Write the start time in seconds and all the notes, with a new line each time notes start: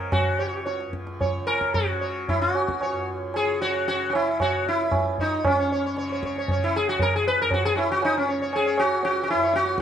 Already playing: C#2 F#2 C#3 A#4
0.12 F#4, tabla na, tabla ge
0.36 C#2 C#5
0.66 C#5, tabla te
0.80 tabla te
0.87 F#2
0.93 tabla ke
1.07 tabla te
1.21 C#5, tabla tin, tabla ge
1.39 C#3
1.47 A#4, tabla na
1.61 tabla ke
1.74 F#4, tabla tin, tabla ge
1.91 C#3
2.01 C#5
2.29 E4, tabla tin, tabla ge
2.42 C#2 F#4
2.55 tabla na
2.68 tabla ke
2.81 C#5, tabla na
2.93 F#2
3.34 G#4 C#5, tabla na
3.44 C#3
3.62 F#4 C#5
3.88 F#4 C#5, tabla tin
3.94 C#3
4.10 F#4, tabla na
4.15 E4
4.40 F#4 C#5, tabla na, tabla ge
4.45 C#2
4.66 E4, tabla te
4.92 F#2, tabla na, tabla ge
5.18 D#4 C#5, tabla ge
5.45 F#2 C#4, tabla na, tabla ge
5.59 C#5
5.72 C#5
5.86 C#5
5.95 C#3 C#5, tabla te
6.09 C#5, tabla te
6.23 C#5, tabla ke
6.36 C#5, tabla te
6.45 C#3, tabla tin, tabla ge
6.51 C#5
6.64 E4
6.76 G#4
6.89 F#4
6.94 C#2
6.99 A#4, tabla tin, tabla ge
7.16 G#4
7.27 B4
7.41 F#2 A#4
7.51 F#4, tabla tin, tabla ge
7.65 G#4
7.75 E4 F#4, tabla na
7.90 C#3 F#4
8.02 D#4, tabla na
8.17 C#4
8.29 C#5
8.38 C#3 C#5
8.53 G#4, tabla na
8.66 C#5
8.78 F#4, tabla na
8.85 C#2
9.03 F#4, tabla tin
9.23 F#4
9.28 E4, tabla na
9.34 F#2
9.43 C#5
9.54 F#4, tabla te
9.66 tabla te
9.78 tabla ke